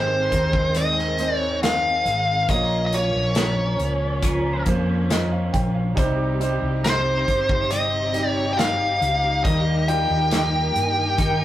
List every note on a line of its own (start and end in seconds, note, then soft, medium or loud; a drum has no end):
0.00 0.28 G#1 medium
0.00 0.27 G#2 medium
0.00 2.46 D#3 medium
0.00 0.31 G#3 medium
0.00 1.19 G#3 medium
0.00 2.46 G#3 medium
0.00 0.32 C4 soft
0.00 2.46 C4 medium
0.00 0.31 D#4 medium
0.00 1.19 D#4 medium
0.00 1.10 G4 medium
0.00 0.30 G#4 medium
0.00 0.78 C5 medium
0.00 1.20 C5 medium
0.31 2.02 D#2 medium
0.31 0.75 G#3 soft
0.31 0.75 C4 soft
0.31 0.75 D#4 soft
0.31 0.75 G#4 soft
0.31 kick medium
0.31 closed hi-hat medium
0.53 kick medium
0.74 1.62 G#2 medium
0.74 1.62 D#3 medium
0.74 1.61 G#3 medium
0.74 1.62 C4 medium
0.74 1.63 D#4 medium
0.74 1.63 G#4 medium
0.74 1.36 D#5 medium
0.74 closed hi-hat medium
0.99 snare soft
1.18 2.43 G#3 medium
1.18 2.43 D#4 medium
1.18 2.43 C5 medium
1.18 closed hi-hat medium
1.36 1.59 C#5 medium
1.62 2.06 G#3 medium
1.62 2.06 C4 soft
1.62 2.06 D#4 medium
1.62 2.05 G#4 medium
1.62 2.46 F5 loud
1.62 snare loud
1.62 closed hi-hat medium
2.05 2.46 G#1 medium
2.05 2.49 G#3 soft
2.05 2.50 C4 soft
2.05 2.50 D#4 soft
2.05 2.49 G#4 soft
2.05 closed hi-hat medium
2.48 3.10 A#1 medium
2.48 2.93 A#2 medium
2.48 3.76 A#2 medium
2.48 2.93 F3 medium
2.48 5.94 F3 medium
2.48 2.90 A#3 medium
2.48 5.94 A#3 medium
2.48 5.94 C#4 medium
2.48 2.93 C#4 medium
2.48 2.90 F4 medium
2.48 2.93 F4 medium
2.48 2.91 A#4 medium
2.48 2.91 C#5 medium
2.48 2.83 D#5 medium
2.48 kick medium
2.48 closed hi-hat medium
2.86 2.93 D#5 medium
2.92 4.58 A#3 medium
2.92 3.36 C#4 soft
2.92 4.58 F4 medium
2.92 3.36 F4 soft
2.92 3.36 A#4 soft
2.92 4.63 C#5 medium
2.92 4.59 C#5 medium
2.92 closed hi-hat medium
3.14 3.75 A#1 medium
3.35 4.22 F3 soft
3.35 4.23 C#4 soft
3.35 4.23 F4 medium
3.35 4.24 A#4 medium
3.35 snare loud
3.35 closed hi-hat loud
3.79 4.62 C#2 medium
3.79 closed hi-hat medium
4.22 5.10 A#2 medium
4.22 5.08 F3 medium
4.22 5.09 C#4 medium
4.22 5.10 F4 medium
4.22 5.11 A#4 medium
4.22 kick medium
4.22 closed hi-hat medium
4.66 5.49 F2 medium
4.66 5.90 A#3 medium
4.66 5.91 F4 medium
4.66 5.91 C5 medium
4.66 kick medium
4.66 closed hi-hat medium
5.09 5.96 F3 medium
5.09 5.97 C#4 medium
5.09 5.98 F4 medium
5.09 5.98 A#4 medium
5.09 5.31 D#5 medium
5.09 snare loud
5.09 closed hi-hat medium
5.32 5.52 F5 medium
5.53 5.94 A#1 medium
5.53 5.74 G5 medium
5.53 kick medium
5.53 closed hi-hat medium
5.74 6.16 F5 medium
5.95 6.58 C2 medium
5.95 7.23 C3 medium
5.95 6.41 C3 medium
5.95 9.42 C3 medium
5.95 6.37 G3 medium
5.95 6.41 G3 medium
5.95 9.41 C4 medium
5.95 6.41 C4 medium
5.95 6.38 D#4 medium
5.95 11.45 D#4 medium
5.95 6.41 D#4 medium
5.95 11.45 G4 medium
5.95 6.38 C5 medium
5.95 kick loud
5.95 closed hi-hat medium
5.99 6.39 G4 medium
6.39 8.05 G3 medium
6.39 8.05 D#4 medium
6.39 6.85 D#4 medium
6.39 6.84 G4 soft
6.39 8.06 C5 medium
6.39 closed hi-hat medium
6.43 6.84 C4 soft
6.62 7.23 C2 medium
6.84 7.71 G3 medium
6.84 7.71 C4 medium
6.84 7.72 D#4 medium
6.84 7.73 G4 medium
6.84 7.74 C5 medium
6.84 snare loud
6.84 closed hi-hat loud
7.28 8.98 G1 medium
7.28 kick medium
7.28 closed hi-hat medium
7.49 kick medium
7.70 8.58 C3 medium
7.70 8.57 G3 medium
7.70 8.57 C4 medium
7.70 8.59 D#4 medium
7.70 8.60 G4 medium
7.70 8.30 D#5 medium
7.70 closed hi-hat medium
8.13 9.37 G3 medium
8.13 9.38 D#4 medium
8.13 9.38 G4 medium
8.13 closed hi-hat medium
8.30 8.53 C#5 medium
8.53 8.59 G5 medium
8.57 9.44 G3 soft
8.57 9.45 C4 medium
8.57 9.45 D#4 medium
8.57 9.46 G4 medium
8.57 9.44 F5 medium
8.57 snare loud
8.57 closed hi-hat medium
9.01 9.42 C#2 medium
9.01 closed hi-hat medium
9.44 10.06 D#2 medium
9.44 9.88 D#3 medium
9.44 11.45 D#3 medium
9.44 10.71 D#3 medium
9.44 9.88 G3 medium
9.44 9.86 G3 medium
9.44 9.88 A#3 medium
9.44 9.86 D#4 medium
9.44 9.88 D#4 medium
9.44 9.86 G4 medium
9.44 11.45 A#4 medium
9.44 9.86 A#4 medium
9.44 9.89 D#5 medium
9.44 kick loud
9.44 closed hi-hat medium
9.87 11.45 G3 medium
9.87 10.30 A#3 soft
9.87 11.45 D#4 medium
9.87 10.32 D#4 soft
9.87 11.45 F4 medium
9.87 10.31 G4 soft
9.87 11.45 G5 medium
9.87 closed hi-hat medium
10.10 10.71 D#2 medium
10.30 11.18 G3 medium
10.30 11.18 A#3 medium
10.30 11.19 D#4 medium
10.30 11.19 G4 soft
10.30 snare loud
10.30 closed hi-hat loud
10.75 11.45 G2 medium
10.75 closed hi-hat medium
11.18 11.45 D#3 medium
11.18 11.45 G3 medium
11.18 11.45 A#3 medium
11.18 11.45 D#4 medium
11.18 11.45 G4 medium
11.18 kick medium
11.18 closed hi-hat medium